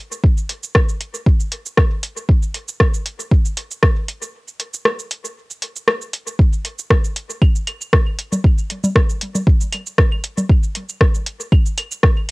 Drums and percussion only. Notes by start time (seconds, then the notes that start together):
0.12 cabasa
0.24 kick
0.38 cabasa
0.49 closed hi-hat
0.63 cabasa
0.75 kick, cross-stick
0.89 cabasa
1.01 closed hi-hat
1.14 cabasa
1.26 kick
1.40 cabasa
1.52 closed hi-hat
1.66 cabasa
1.77 kick, cross-stick
2.03 closed hi-hat
2.17 cabasa
2.29 kick
2.43 cabasa
2.54 closed hi-hat
2.68 cabasa
2.80 kick, cross-stick
2.94 cabasa
3.06 closed hi-hat
3.20 cabasa
3.31 kick
3.45 cabasa
3.57 closed hi-hat
3.71 cabasa
3.83 kick, cross-stick
4.08 closed hi-hat
4.22 cabasa
4.48 cabasa
4.60 closed hi-hat
4.74 cabasa
4.85 cross-stick
4.99 cabasa
5.11 closed hi-hat
5.25 cabasa
5.50 cabasa
5.62 closed hi-hat
5.76 cabasa
5.88 cross-stick
6.02 cabasa
6.13 closed hi-hat
6.27 cabasa
6.39 kick
6.53 cabasa
6.65 closed hi-hat
6.79 cabasa
6.90 kick, cross-stick
7.04 cabasa
7.16 closed hi-hat
7.30 cabasa
7.42 kick, claves
7.56 cabasa
7.67 closed hi-hat, claves
7.81 cabasa
7.93 kick, cross-stick
8.19 closed hi-hat
8.32 low conga, cabasa
8.44 kick
8.58 cabasa
8.70 closed hi-hat
8.84 low conga, cabasa
8.96 kick, cross-stick
9.10 cabasa
9.21 closed hi-hat
9.35 low conga, cabasa
9.47 kick
9.61 cabasa
9.72 closed hi-hat, claves
9.86 cabasa
9.98 kick, cross-stick
10.12 claves
10.24 closed hi-hat
10.38 low conga, cabasa
10.49 kick
10.63 cabasa
10.75 closed hi-hat
10.89 cabasa
11.01 kick, cross-stick
11.15 cabasa
11.26 closed hi-hat
11.40 cabasa
11.52 kick, claves
11.66 cabasa
11.78 closed hi-hat, claves
11.91 cabasa
12.03 kick, cross-stick